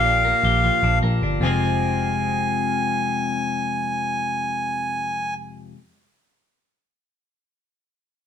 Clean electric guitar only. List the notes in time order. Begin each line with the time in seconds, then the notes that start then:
Already playing: A#2 F3 A#3 G4
0.05 D4
0.25 A#3
0.45 G4
0.64 F3
0.84 D4
1.03 A#3
1.23 D4
1.41 F2 C3 F3 G#3
1.45 C4 G#4